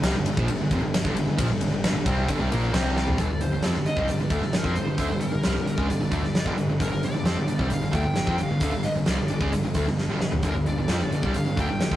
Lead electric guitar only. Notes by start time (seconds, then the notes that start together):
2.73 C5
2.96 D5
3.41 C5
3.63 D5
3.87 D#5
4.10 D5
4.31 D5
4.55 A#4
4.75 C5
5.21 A#4
5.88 D5
6.81 A#4
7.04 D5
7.73 F5
7.96 G5
8.43 F5
8.85 D#5
9.10 D5
10.49 A#4
10.67 D5
11.36 F5
11.61 G5